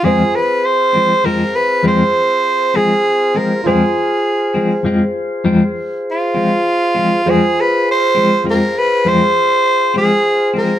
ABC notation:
X:1
M:12/8
L:1/8
Q:3/8=67
K:Fm
V:1 name="Tenor saxophone"
A =B c2 _B =B c3 A2 _B | A4 z4 F4 | A =B c2 _B =B c3 A2 _B |]
V:2 name="Grand piano"
[FAc]12 | [FAc]12 | [FAc]12 |]
V:3 name="Tonewheel organ"
[CFAc]12 | [FAc]12 | [FAc]12 |]
V:4 name="Clean electric guitar" clef=bass
[F,,F,A,C] z2 [F,A,C] [F,,F,A,C] z [F,,F,A,C] z2 [F,A,C] z [F,A,C] | [F,,F,A,C] z2 [F,A,C] [F,,F,A,C] z [F,,F,A,C] z2 [F,A,C] z [F,A,C] | [F,,F,A,C] z2 [F,A,C] [F,,F,A,C] z [F,,F,A,C] z2 [F,A,C] z [F,A,C] |]